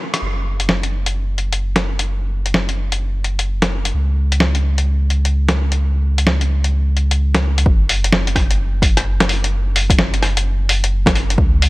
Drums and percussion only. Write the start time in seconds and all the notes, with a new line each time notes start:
0.14 cross-stick, closed hi-hat
0.60 closed hi-hat
0.69 snare
0.83 closed hi-hat
1.06 closed hi-hat
1.38 closed hi-hat
1.53 closed hi-hat
1.76 snare, closed hi-hat
1.99 closed hi-hat
2.46 closed hi-hat
2.54 snare
2.69 closed hi-hat
2.92 closed hi-hat
3.24 closed hi-hat
3.39 closed hi-hat
3.62 snare, closed hi-hat
3.85 closed hi-hat
4.32 closed hi-hat
4.40 snare
4.55 closed hi-hat
4.78 closed hi-hat
5.10 closed hi-hat
5.25 closed hi-hat
5.49 snare, closed hi-hat
5.72 closed hi-hat
6.18 closed hi-hat
6.27 snare
6.41 closed hi-hat
6.64 closed hi-hat
6.97 closed hi-hat
7.11 closed hi-hat
7.35 snare, closed hi-hat
7.58 closed hi-hat
7.66 kick
7.89 open hi-hat
8.04 closed hi-hat
8.13 snare
8.27 closed hi-hat
8.36 kick, cross-stick, open hi-hat
8.51 closed hi-hat
8.82 kick, open hi-hat
8.97 cross-stick, closed hi-hat
9.20 cross-stick, snare, closed hi-hat
9.29 open hi-hat
9.44 closed hi-hat
9.76 open hi-hat
9.90 kick, closed hi-hat
9.99 snare
10.14 closed hi-hat
10.23 cross-stick, open hi-hat
10.37 closed hi-hat
10.69 open hi-hat
10.84 closed hi-hat
11.06 kick, snare, closed hi-hat
11.16 open hi-hat
11.30 closed hi-hat
11.38 kick
11.62 open hi-hat